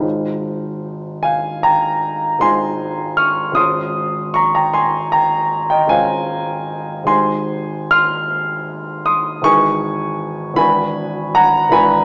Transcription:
0.00 2.37 G#1 soft
0.00 2.37 G#3 soft
0.00 2.38 D#4 soft
0.00 2.38 F4 soft
0.00 2.38 C5 soft
1.23 1.62 F5 medium
1.23 1.64 G#5 medium
1.63 2.39 G5 medium
1.63 2.42 A#5 medium
2.39 3.51 G#1 soft
2.39 3.52 G#3 soft
2.39 3.52 D#4 soft
2.39 3.53 F4 soft
2.39 3.53 C5 soft
2.39 3.15 G#5 medium
2.39 3.18 C6 medium
3.17 3.54 C#6 medium
3.17 3.56 F6 medium
3.52 5.84 G#1 soft
3.52 5.84 G#3 soft
3.52 5.85 C#4 soft
3.52 5.85 F4 soft
3.52 5.86 C5 soft
3.52 4.31 C6 medium
3.52 4.35 D#6 medium
4.34 4.53 A#5 medium
4.34 4.54 C#6 medium
4.55 4.73 G5 medium
4.55 4.74 A#5 medium
4.74 5.10 G#5 medium
4.74 5.12 C6 medium
5.12 5.67 G5 medium
5.12 5.71 A#5 medium
5.70 5.89 D#5 medium
5.70 5.90 G5 medium
5.87 7.03 G#1 soft
5.87 7.03 G#3 soft
5.87 7.03 C#4 soft
5.87 7.04 F4 soft
5.87 7.04 C5 soft
5.87 7.04 F5 medium
5.87 7.06 G#5 medium
7.04 9.39 G#1 soft
7.04 9.40 G#3 soft
7.04 9.40 D#4 soft
7.04 9.41 G4 soft
7.04 9.41 C5 soft
7.04 7.88 G#5 medium
7.04 7.91 C6 medium
7.91 9.03 C6 medium
7.91 9.06 F6 loud
9.06 9.42 C6 medium
9.06 9.45 D#6 medium
9.42 10.52 G#1 soft
9.42 10.54 E3 soft
9.42 10.55 D#4 soft
9.42 10.55 G#4 soft
9.42 10.55 B4 soft
9.42 10.55 G#5 medium
9.42 10.58 C#6 loud
10.54 11.68 G#1 soft
10.54 11.68 E3 soft
10.54 11.69 D4 soft
10.54 11.69 F#4 soft
10.54 11.70 B4 soft
10.54 11.31 G#5 medium
10.54 11.34 B5 medium
11.35 11.71 F#5 medium
11.35 11.73 A#5 medium
11.69 12.05 G#1 medium
11.69 12.05 E3 soft
11.69 12.05 D4 soft
11.69 12.05 F#4 soft
11.69 12.05 B4 soft
11.69 12.05 G#5 medium
11.69 12.05 B5 medium

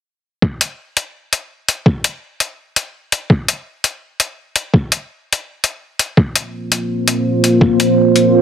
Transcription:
0.42 kick loud
0.61 closed hi-hat medium
0.97 closed hi-hat medium
1.33 closed hi-hat medium
1.68 closed hi-hat medium
1.86 kick loud
2.04 closed hi-hat medium
2.40 closed hi-hat medium
2.76 closed hi-hat medium
3.12 closed hi-hat medium
3.30 kick loud
3.48 closed hi-hat medium
3.84 closed hi-hat medium
4.20 closed hi-hat medium
4.56 closed hi-hat medium
4.74 kick loud
4.92 closed hi-hat medium
5.33 closed hi-hat medium
5.64 closed hi-hat medium
5.99 closed hi-hat medium
6.17 8.42 A#3 medium
6.17 8.42 F4 medium
6.17 8.42 C5 medium
6.17 kick loud
6.36 closed hi-hat medium
6.72 closed hi-hat medium
7.08 closed hi-hat medium
7.44 closed hi-hat medium
7.61 kick loud
7.80 closed hi-hat medium
8.16 closed hi-hat medium

